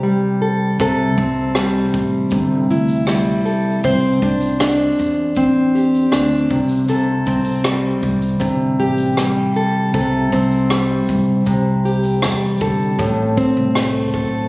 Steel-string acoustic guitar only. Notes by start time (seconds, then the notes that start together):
Already playing: C3 C4 G4 A4
0.03 G3
0.42 A4
0.80 C3 A4
1.18 C4
1.57 G3
2.32 C3
2.71 E4
3.08 G3
3.46 A4
3.84 C4 C5
4.23 D4
4.61 D4
5.37 C4
5.75 G4
6.12 D4
6.51 C3
6.88 C3 A4
7.27 C4
7.65 G3
8.40 C3
8.80 G4
9.17 G3
9.56 A4
9.94 C3 A4
10.33 C4
10.71 G3
11.46 C3
11.85 G4
12.22 G3
12.61 A4
12.99 A2
13.37 C4
13.76 A3
14.14 A4